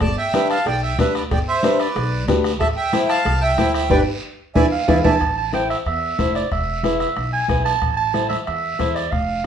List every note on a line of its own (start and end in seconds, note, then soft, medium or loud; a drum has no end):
0.00 0.14 G1 medium
0.00 0.16 D5 medium
0.00 0.16 A5 loud
0.00 bombo low medium
0.00 bombo rim medium
0.00 cowbell medium
0.00 high conga soft
0.00 long guiro medium
0.18 0.48 E5 medium
0.18 0.48 G5 loud
0.34 0.56 D4 medium
0.34 0.57 G4 medium
0.34 0.57 B4 medium
0.34 bombo rim medium
0.34 high conga medium
0.34 short guiro medium
0.50 0.66 F5 medium
0.50 0.67 A5 loud
0.50 bombo rim medium
0.50 short guiro medium
0.66 0.99 B1 medium
0.66 0.82 D5 medium
0.66 0.81 G5 loud
0.66 bombo rim medium
0.66 cowbell medium
0.66 high conga soft
0.66 long guiro medium
0.82 0.97 E5 medium
0.82 0.99 G5 medium
0.98 1.33 D2 loud
0.98 1.22 D4 medium
0.98 1.22 G4 medium
0.98 1.14 B4 medium
0.98 1.22 B4 medium
0.98 1.14 E5 medium
0.98 bombo low medium
0.98 bombo rim medium
0.98 high conga medium
0.98 short guiro medium
1.15 1.23 B4 medium
1.15 1.23 D5 medium
1.15 bombo rim medium
1.15 short guiro medium
1.31 1.44 G1 medium
1.31 1.39 D5 medium
1.31 1.39 G5 loud
1.31 bombo low medium
1.31 bombo rim medium
1.31 cowbell medium
1.31 high conga soft
1.31 long guiro medium
1.48 1.78 C5 medium
1.48 1.81 E5 medium
1.63 1.86 D4 medium
1.63 1.86 G4 medium
1.63 1.87 B4 medium
1.63 bombo rim medium
1.63 high conga medium
1.63 short guiro medium
1.79 2.25 B4 medium
1.79 2.25 D5 medium
1.79 bombo rim medium
1.79 short guiro medium
1.95 2.28 B1 medium
1.95 bombo rim medium
1.95 cowbell medium
1.95 high conga soft
1.95 long guiro medium
2.28 2.61 D2 loud
2.28 2.51 D4 medium
2.28 2.51 G4 medium
2.28 2.51 B4 medium
2.28 bombo low medium
2.28 bombo rim medium
2.28 high conga medium
2.28 low conga medium
2.28 low timbale medium
2.28 short guiro medium
2.44 bombo rim medium
2.44 short guiro medium
2.60 2.74 A1 medium
2.60 2.68 E5 medium
2.60 2.67 A5 loud
2.60 bombo low medium
2.60 bombo rim medium
2.60 cowbell loud
2.60 high conga soft
2.60 long guiro medium
2.76 3.07 E5 medium
2.76 3.10 G5 loud
2.93 3.16 E4 medium
2.93 3.16 A4 medium
2.93 3.16 C5 medium
2.93 bombo rim medium
2.93 high conga medium
2.93 short guiro medium
3.09 3.40 F5 medium
3.09 3.43 A5 loud
3.09 bombo rim medium
3.09 short guiro medium
3.25 3.58 C2 medium
3.25 bombo rim medium
3.25 cowbell medium
3.25 high conga soft
3.25 long guiro medium
3.41 3.73 E5 medium
3.41 3.72 G5 loud
3.58 3.90 D2 loud
3.58 3.81 E4 medium
3.58 3.81 A4 medium
3.58 3.81 C5 medium
3.58 bombo low medium
3.58 bombo rim medium
3.58 high conga medium
3.58 short guiro medium
3.73 3.90 E5 medium
3.73 3.89 G5 loud
3.73 bombo rim medium
3.73 short guiro medium
3.90 4.03 G1 medium
3.90 4.01 D4 medium
3.90 4.01 G4 medium
3.90 4.01 B4 loud
3.90 4.01 D5 loud
3.90 4.01 G5 loud
3.90 bombo low loud
3.90 high conga loud
3.90 high timbale loud
3.90 long guiro loud
4.55 4.68 E2 medium
4.55 4.66 E4 loud
4.55 4.66 G#4 medium
4.55 4.66 B4 loud
4.55 4.66 D5 loud
4.55 4.66 E5 loud
4.55 4.66 G#5 loud
4.55 bombo low loud
4.55 high conga medium
4.55 high timbale medium
4.55 long guiro loud
4.72 5.02 F5 loud
4.88 5.01 E2 loud
4.88 4.99 E4 medium
4.88 4.99 G#4 medium
4.88 4.99 B4 medium
4.88 4.98 D5 medium
4.88 4.98 E5 medium
4.88 4.98 G#5 medium
4.88 bombo low loud
4.88 high conga medium
4.88 high timbale loud
5.04 5.17 E2 loud
5.04 5.15 E4 medium
5.04 5.15 G#4 medium
5.04 5.15 B4 medium
5.04 5.15 D5 medium
5.04 5.15 E5 medium
5.04 5.15 G#5 medium
5.04 5.35 A5 loud
5.04 bombo low medium
5.04 high conga loud
5.04 high timbale medium
5.04 long guiro loud
5.21 5.73 A1 medium
5.21 bombo low medium
5.21 bombo rim medium
5.21 long guiro medium
5.38 5.52 A5 loud
5.53 5.76 E4 medium
5.53 5.76 A4 medium
5.53 5.76 C5 medium
5.53 5.69 G5 medium
5.53 bombo rim medium
5.53 high conga medium
5.53 short guiro medium
5.70 5.77 E5 medium
5.70 bombo rim medium
5.70 short guiro medium
5.86 6.12 E2 medium
5.86 6.32 E5 loud
5.86 bombo rim medium
5.86 long guiro medium
6.19 6.45 F1 medium
6.19 6.41 E4 medium
6.19 6.42 A4 medium
6.19 6.42 C5 medium
6.19 bombo low medium
6.19 bombo rim medium
6.19 high conga medium
6.19 short guiro medium
6.35 6.50 D5 medium
6.35 bombo rim medium
6.35 short guiro medium
6.51 7.04 E1 medium
6.51 6.97 E5 medium
6.51 bombo low medium
6.51 bombo rim medium
6.51 long guiro medium
6.83 7.07 E4 medium
6.83 7.07 G#4 medium
6.83 7.07 B4 medium
6.83 bombo rim medium
6.83 high conga medium
6.83 short guiro medium
6.99 7.30 E5 medium
6.99 bombo rim medium
6.99 short guiro medium
7.16 7.43 B1 medium
7.16 bombo rim medium
7.16 long guiro medium
7.33 7.63 G#5 medium
7.48 7.75 B1 medium
7.48 7.72 E4 medium
7.48 7.72 G#4 medium
7.48 7.72 B4 medium
7.48 bombo low medium
7.48 bombo rim medium
7.48 high conga medium
7.48 short guiro medium
7.65 7.95 A5 loud
7.65 bombo rim medium
7.65 short guiro medium
7.82 8.34 A1 medium
7.82 bombo low medium
7.82 bombo rim medium
7.82 long guiro medium
7.97 8.28 A5 loud
8.14 8.37 E4 medium
8.14 8.37 A4 medium
8.14 8.37 C5 medium
8.14 bombo rim medium
8.14 high conga medium
8.14 short guiro medium
8.29 8.37 E5 medium
8.29 bombo rim medium
8.29 high conga medium
8.29 short guiro medium
8.47 8.73 E2 medium
8.47 8.97 E5 medium
8.47 bombo rim medium
8.47 long guiro medium
8.79 9.06 E2 medium
8.79 9.02 E4 medium
8.79 9.02 A4 medium
8.79 9.02 C5 medium
8.79 bombo low medium
8.79 bombo rim medium
8.79 high conga medium
8.79 short guiro medium
8.95 9.13 D5 medium
8.95 bombo rim medium
8.95 short guiro medium
9.11 9.46 F1 medium
9.11 9.46 F5 medium
9.11 bombo low medium
9.11 bombo rim medium
9.11 long guiro medium